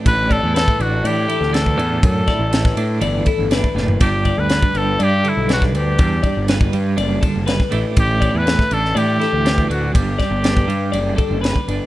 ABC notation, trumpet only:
X:1
M:4/4
L:1/16
Q:1/4=121
K:G
V:1 name="Trumpet"
B2 A2 A2 F2 G4 A4 | A8 z8 | G3 B3 A2 G2 E2 F2 G2- | G4 z12 |
G3 B3 A2 G6 F2 | G12 z4 |]